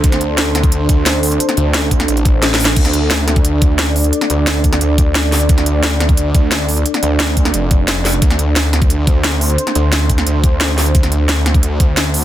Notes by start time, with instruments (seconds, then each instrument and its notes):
Already playing: analog synth pad D4 A4 C5
0.04 detuned saw bass D2, kick, closed hi-hat
0.12 snare, closed hi-hat
0.21 closed hi-hat
0.38 snare, closed hi-hat
0.55 snare, closed hi-hat
0.63 kick, closed hi-hat
0.72 closed hi-hat
0.89 detuned saw bass D2, kick, closed hi-hat
1.06 snare, closed hi-hat
1.23 open hi-hat
1.32 closed hi-hat
1.40 closed hi-hat
1.49 snare, closed hi-hat
1.57 detuned saw bass D2, closed hi-hat
1.74 snare, closed hi-hat
1.91 kick, closed hi-hat
2.00 snare, closed hi-hat
2.08 detuned saw bass A1, closed hi-hat
2.17 closed hi-hat
2.25 kick, closed hi-hat
2.42 detuned saw bass A1, snare, closed hi-hat
2.54 snare
2.59 open hi-hat
2.65 snare, closed hi-hat
2.76 detuned saw bass D2, analog synth pad D5, kick, closed hi-hat, crash
2.85 snare, closed hi-hat
2.94 closed hi-hat
3.11 snare, closed hi-hat
3.28 snare, closed hi-hat
3.36 kick, closed hi-hat
3.45 closed hi-hat
3.62 detuned saw bass D2, kick, closed hi-hat
3.79 snare, closed hi-hat
3.96 open hi-hat
4.04 closed hi-hat
4.13 closed hi-hat
4.21 snare, closed hi-hat
4.30 detuned saw bass D2, closed hi-hat
4.47 snare, closed hi-hat
4.64 kick, closed hi-hat
4.73 snare, closed hi-hat
4.81 detuned saw bass D2, closed hi-hat
4.98 kick, closed hi-hat
5.15 snare, closed hi-hat
5.32 snare, open hi-hat
5.41 closed hi-hat
5.49 detuned saw bass D2, kick, closed hi-hat
5.58 snare, closed hi-hat
5.66 closed hi-hat
5.83 snare, closed hi-hat
6.00 snare, closed hi-hat
6.09 kick, closed hi-hat
6.17 closed hi-hat
6.35 detuned saw bass D2, kick, closed hi-hat
6.52 snare, closed hi-hat
6.69 open hi-hat
6.77 closed hi-hat
6.86 closed hi-hat
6.94 snare, closed hi-hat
7.03 detuned saw bass D2, closed hi-hat
7.20 snare, closed hi-hat
7.37 kick, closed hi-hat
7.45 snare, closed hi-hat
7.54 detuned saw bass F1, closed hi-hat
7.71 kick, closed hi-hat
7.88 snare, closed hi-hat
8.05 snare, open hi-hat
8.13 closed hi-hat
8.22 detuned saw bass D2, analog synth pad C5, kick, closed hi-hat
8.30 snare, closed hi-hat
8.39 closed hi-hat
8.56 snare, closed hi-hat
8.73 snare, closed hi-hat
8.82 kick, closed hi-hat
8.90 closed hi-hat
9.07 detuned saw bass D2, kick, closed hi-hat
9.24 snare, closed hi-hat
9.41 open hi-hat
9.50 closed hi-hat
9.58 closed hi-hat
9.67 snare, closed hi-hat
9.75 detuned saw bass D2, closed hi-hat
9.92 snare, closed hi-hat
10.10 kick, closed hi-hat
10.18 snare, closed hi-hat
10.27 detuned saw bass D2, closed hi-hat
10.44 kick, closed hi-hat
10.61 snare, closed hi-hat
10.78 snare, open hi-hat
10.86 closed hi-hat
10.95 detuned saw bass D2, kick, closed hi-hat
11.03 snare, closed hi-hat
11.12 closed hi-hat
11.29 snare, closed hi-hat
11.46 snare, closed hi-hat
11.54 kick, closed hi-hat
11.63 closed hi-hat
11.80 detuned saw bass D2, kick, closed hi-hat
11.97 snare, closed hi-hat
12.14 open hi-hat